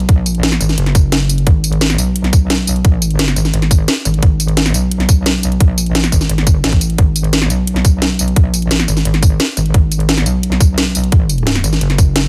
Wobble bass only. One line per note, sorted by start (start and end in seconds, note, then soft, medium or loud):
0.00 0.19 B1 loud
0.19 0.46 A#1 loud
0.46 0.59 A1 loud
0.60 0.76 G#1 loud
0.78 1.45 F#1 loud
1.47 1.97 G#1 loud
1.98 2.97 B1 loud
2.97 3.19 A1 loud
3.19 3.35 G1 loud
3.36 3.52 G#1 loud
3.54 3.87 G#1 loud
4.05 4.21 G#1 loud
4.23 4.73 G#1 loud
4.74 5.70 B1 loud
5.70 5.97 A#1 loud
5.97 6.11 A1 loud
6.12 6.28 G#1 loud
6.29 6.63 G#1 loud
6.64 6.97 A1 loud
6.98 7.49 G#1 loud
7.50 8.46 B1 loud
8.46 8.73 A#1 loud
8.73 8.87 A1 loud
8.88 9.04 G#1 loud
9.05 9.38 G#1 loud
9.57 9.73 G#1 loud
9.74 10.25 G#1 loud
10.26 11.63 B1 loud
11.64 11.80 G#1 loud
11.81 12.28 F#1 loud